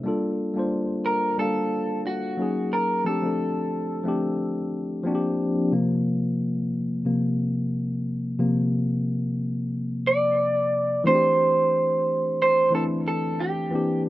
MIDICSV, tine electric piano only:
0, 0, Header, 1, 2, 480
1, 0, Start_track
1, 0, Tempo, 666667
1, 274, Time_signature, 4, 2, 24, 8
1, 10145, End_track
2, 0, Start_track
2, 0, Title_t, "Tine electric piano"
2, 0, Program_c, 0, 4
2, 0, Control_c, 0, 64, 127
2, 25, Note_on_c, 0, 55, 83
2, 33, Note_on_c, 0, 58, 74
2, 41, Note_on_c, 0, 62, 77
2, 44, Control_c, 0, 64, 0
2, 49, Note_on_c, 0, 65, 76
2, 59, Note_on_c, 0, 69, 93
2, 159, Control_c, 0, 64, 127
2, 365, Note_off_c, 0, 55, 0
2, 369, Note_off_c, 0, 58, 0
2, 373, Note_off_c, 0, 62, 0
2, 377, Note_off_c, 0, 65, 0
2, 382, Note_off_c, 0, 69, 0
2, 390, Note_on_c, 0, 55, 76
2, 401, Note_on_c, 0, 58, 68
2, 408, Note_on_c, 0, 62, 71
2, 418, Note_on_c, 0, 65, 71
2, 425, Note_on_c, 0, 72, 85
2, 941, Note_off_c, 0, 55, 0
2, 946, Note_off_c, 0, 58, 0
2, 950, Note_off_c, 0, 62, 0
2, 954, Note_off_c, 0, 65, 0
2, 958, Note_off_c, 0, 72, 0
2, 993, Note_on_c, 0, 55, 70
2, 998, Note_on_c, 0, 58, 61
2, 1007, Note_on_c, 0, 62, 61
2, 1017, Note_on_c, 0, 77, 63
2, 1024, Note_on_c, 0, 69, 74
2, 1706, Note_off_c, 0, 58, 0
2, 1708, Note_on_c, 0, 54, 75
2, 1713, Note_off_c, 0, 55, 0
2, 1715, Note_on_c, 0, 58, 68
2, 1720, Note_off_c, 0, 62, 0
2, 1722, Control_c, 0, 64, 0
2, 1725, Note_off_c, 0, 77, 0
2, 1725, Note_on_c, 0, 61, 69
2, 1729, Note_off_c, 0, 69, 0
2, 1734, Note_on_c, 0, 63, 68
2, 1741, Note_on_c, 0, 68, 83
2, 1845, Control_c, 0, 64, 127
2, 2153, Note_off_c, 0, 54, 0
2, 2156, Note_off_c, 0, 58, 0
2, 2161, Note_off_c, 0, 61, 0
2, 2166, Note_off_c, 0, 63, 0
2, 2169, Note_off_c, 0, 68, 0
2, 2190, Note_on_c, 0, 53, 71
2, 2194, Note_on_c, 0, 57, 64
2, 2203, Note_on_c, 0, 60, 66
2, 2204, Control_c, 0, 64, 0
2, 2214, Note_on_c, 0, 62, 64
2, 2222, Note_on_c, 0, 67, 79
2, 2309, Note_off_c, 0, 53, 0
2, 2311, Note_off_c, 0, 57, 0
2, 2316, Note_off_c, 0, 60, 0
2, 2319, Note_on_c, 0, 53, 69
2, 2321, Note_off_c, 0, 62, 0
2, 2322, Control_c, 0, 64, 127
2, 2323, Note_on_c, 0, 57, 64
2, 2325, Note_off_c, 0, 67, 0
2, 2335, Note_on_c, 0, 60, 61
2, 2342, Note_on_c, 0, 62, 64
2, 2351, Note_on_c, 0, 69, 74
2, 2865, Note_off_c, 0, 53, 0
2, 2867, Note_off_c, 0, 57, 0
2, 2873, Note_off_c, 0, 60, 0
2, 2877, Note_off_c, 0, 62, 0
2, 2881, Note_off_c, 0, 69, 0
2, 2906, Note_on_c, 0, 53, 82
2, 2915, Note_on_c, 0, 57, 76
2, 2925, Note_on_c, 0, 60, 78
2, 2934, Note_on_c, 0, 62, 71
2, 2940, Note_on_c, 0, 67, 89
2, 3617, Note_off_c, 0, 53, 0
2, 3626, Note_on_c, 0, 53, 89
2, 3635, Note_off_c, 0, 57, 0
2, 3635, Note_off_c, 0, 60, 0
2, 3635, Note_on_c, 0, 58, 81
2, 3641, Note_off_c, 0, 62, 0
2, 3643, Control_c, 0, 64, 0
2, 3643, Note_on_c, 0, 60, 84
2, 3647, Note_off_c, 0, 67, 0
2, 3650, Note_on_c, 0, 62, 84
2, 3660, Note_on_c, 0, 66, 81
2, 3697, Note_off_c, 0, 66, 0
2, 3706, Note_on_c, 0, 67, 95
2, 3759, Control_c, 0, 64, 127
2, 4072, Note_off_c, 0, 53, 0
2, 4077, Note_off_c, 0, 58, 0
2, 4081, Note_off_c, 0, 60, 0
2, 4084, Note_off_c, 0, 62, 0
2, 4112, Note_off_c, 0, 67, 0
2, 4119, Note_on_c, 0, 48, 51
2, 4122, Note_on_c, 0, 53, 48
2, 4124, Control_c, 0, 64, 0
2, 4126, Note_on_c, 0, 58, 60
2, 4246, Control_c, 0, 64, 127
2, 4808, Note_off_c, 0, 48, 0
2, 4809, Note_off_c, 0, 53, 0
2, 4811, Note_off_c, 0, 58, 0
2, 5080, Note_on_c, 0, 48, 47
2, 5083, Note_on_c, 0, 53, 41
2, 5086, Note_on_c, 0, 58, 53
2, 5293, Note_off_c, 0, 48, 0
2, 5295, Note_off_c, 0, 53, 0
2, 5296, Note_off_c, 0, 58, 0
2, 6039, Note_on_c, 0, 48, 56
2, 6043, Note_on_c, 0, 53, 51
2, 6048, Note_on_c, 0, 58, 62
2, 7928, Note_off_c, 0, 48, 0
2, 7930, Note_off_c, 0, 53, 0
2, 7932, Note_off_c, 0, 58, 0
2, 7949, Note_on_c, 0, 52, 75
2, 7958, Note_on_c, 0, 57, 69
2, 7964, Control_c, 0, 64, 0
2, 7966, Note_on_c, 0, 60, 66
2, 7975, Note_on_c, 0, 62, 72
2, 7982, Note_on_c, 0, 66, 67
2, 8018, Note_off_c, 0, 66, 0
2, 8031, Note_on_c, 0, 67, 81
2, 8095, Control_c, 0, 64, 127
2, 8836, Note_off_c, 0, 52, 0
2, 8840, Note_off_c, 0, 57, 0
2, 8844, Note_off_c, 0, 60, 0
2, 8849, Note_off_c, 0, 62, 0
2, 8876, Note_off_c, 0, 67, 0
2, 9148, Note_on_c, 0, 52, 76
2, 9157, Note_on_c, 0, 57, 69
2, 9166, Note_on_c, 0, 60, 68
2, 9173, Note_on_c, 0, 62, 66
2, 9183, Note_on_c, 0, 64, 81
2, 9814, Note_off_c, 0, 52, 0
2, 9819, Note_off_c, 0, 57, 0
2, 9823, Note_off_c, 0, 60, 0
2, 9827, Note_off_c, 0, 62, 0
2, 9832, Note_off_c, 0, 64, 0
2, 9870, Note_on_c, 0, 52, 79
2, 9879, Note_on_c, 0, 58, 71
2, 9883, Control_c, 0, 64, 0
2, 9888, Note_on_c, 0, 60, 70
2, 9895, Note_on_c, 0, 62, 69
2, 9903, Note_on_c, 0, 67, 85
2, 9997, Control_c, 0, 64, 127
2, 10145, Note_off_c, 0, 52, 0
2, 10145, Note_off_c, 0, 58, 0
2, 10145, Note_off_c, 0, 60, 0
2, 10145, Note_off_c, 0, 62, 0
2, 10145, Note_off_c, 0, 67, 0
2, 10145, End_track
0, 0, End_of_file